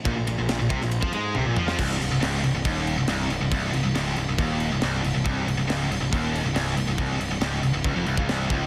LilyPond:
<<
  \new Staff \with { instrumentName = "Distorted electric guitar" } { \clef bass \time 4/4 \key c \minor \tempo 4 = 139 bes,16 bes,16 bes,16 bes,16 bes,16 bes,16 c16 bes,8 f16 aes8 c16 bes,16 f16 f16 | c,8 c,16 c,16 des,8 c,16 c,16 ees,8. c,16 c,8 c,16 c,16 | c,8 c,16 c,16 des,8 c,16 c,16 ees,8. c,16 c,8 c,16 c,16 | c,8 c,16 c,16 des,8 c,16 c,16 ees,8. c,16 c,8 c,16 c,16 |
c,8 c,16 c,16 des,8 c,16 c,16 des,16 f,16 c,16 des,16 c,8 des,8 | }
  \new Staff \with { instrumentName = "Distorted electric guitar" } { \clef bass \time 4/4 \key c \minor bes,16 bes,16 bes,16 bes,16 bes,16 bes,16 c16 bes,8 f16 aes8 c16 bes,16 f16 f16 | c,8 c,16 c,16 des,8 c,16 c,16 ees,8. c,16 c,8 c,16 c,16 | c,8 c,16 c,16 des,8 c,16 c,16 ees,8. c,16 c,8 c,16 c,16 | c,8 c,16 c,16 des,8 c,16 c,16 ees,8. c,16 c,8 c,16 c,16 |
c,8 c,16 c,16 des,8 c,16 c,16 des,16 f,16 c,16 des,16 c,8 des,8 | }
  \new Staff \with { instrumentName = "Distorted electric guitar" } { \clef bass \time 4/4 \key c \minor bes,16 bes,16 bes,16 bes,16 bes,16 bes,16 c16 bes,8 f16 aes8 c16 bes,16 f16 f16 | c,8 c,16 c,16 des,8 c,16 c,16 ees,8. c,16 c,8 c,16 c,16 | c,8 c,16 c,16 des,8 c,16 c,16 ees,8. c,16 c,8 c,16 c,16 | c,8 c,16 c,16 des,8 c,16 c,16 ees,8. c,16 c,8 c,16 c,16 |
c,8 c,16 c,16 des,8 c,16 c,16 des,16 f,16 c,16 des,16 c,8 des,8 | }
  \new Staff \with { instrumentName = "Picked electric bass" } { \clef bass \time 4/4 \key c \minor bes,,16 bes,,16 bes,,16 bes,,16 bes,,16 bes,,16 c,16 bes,,8 f,16 aes,8 c,16 bes,,16 f,16 f,16 | c,,8 c,,16 c,,16 des,,8 c,,16 c,,16 ees,,8. c,,16 c,,8 c,,16 c,,16 | c,,8 c,,16 c,,16 des,,8 c,,16 c,,16 ees,,8. c,,16 c,,8 c,,16 c,,16 | c,,8 c,,16 c,,16 des,,8 c,,16 c,,16 ees,,8. c,,16 c,,8 c,,16 c,,16 |
c,,8 c,,16 c,,16 des,,8 c,,16 c,,16 des,,16 f,,16 c,,16 des,,16 c,,8 des,,8 | }
  \new DrumStaff \with { instrumentName = "Drums" } \drummode { \time 4/4 <bd cymr>8 cymr8 <cymr sn>8 <bd cymr>16 sn16 cymr16 bd16 cymr8 tommh8 toml16 sn16 | <cymc bd>8 cymc8 <cymc sn>8 cymc8 <cymc bd>8 cymc8 <cymc sn>8 cymc8 | <cymc bd>8 cymc8 <cymc sn>8 cymc8 <cymc bd>8 cymc8 <cymc sn>8 cymc8 | <cymc bd>8 cymc8 <cymc sn>8 cymc8 <cymc bd>8 cymc8 <cymc sn>8 cymc8 |
<cymc bd>8 cymc8 <cymc sn>8 cymc8 <cymc bd>8 cymc16 bd16 <cymc sn>8 <cymc bd>8 | }
>>